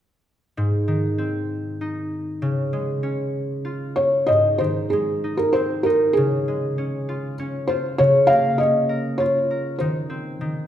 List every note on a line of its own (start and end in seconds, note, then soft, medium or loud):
0.57 2.47 G#2 medium
0.88 2.47 D#3 soft
1.18 2.48 C4 soft
1.81 4.51 D#4 soft
2.42 4.33 C#3 medium
2.73 4.33 G#3 soft
3.03 5.61 C#4 soft
3.65 6.17 F4 soft
3.96 4.29 C#5 medium
4.27 6.21 G#2 medium
4.27 4.60 D#5 medium
4.58 6.21 D#3 soft
4.58 4.88 C5 medium
4.90 6.21 G#3 soft
4.90 5.34 G#4 medium
5.24 5.86 D#4 soft
5.37 5.52 A#4 medium
5.53 6.23 C4 medium
5.53 5.85 C5 medium
5.83 8.56 D#4 soft
5.83 6.13 A#4 medium
6.13 7.98 C#3 medium
6.13 7.33 G#4 medium
6.48 8.03 G#3 soft
6.78 7.39 C#4 soft
7.09 7.69 F4 soft
7.39 8.60 C#4 medium
7.67 9.20 F4 medium
7.67 7.99 C5 medium
7.98 9.85 C#3 medium
7.98 8.29 C#5 medium
8.27 10.67 A#3 medium
8.27 8.59 F5 loud
8.58 10.16 C#4 soft
8.58 9.20 D#5 medium
8.89 9.50 A#4 soft
9.18 10.67 F4 medium
9.18 9.75 C#5 medium
9.51 10.67 A#4 soft
9.79 10.40 D#3 medium
9.79 10.67 C5 medium
10.10 10.67 C4 soft
10.41 10.67 D#3 medium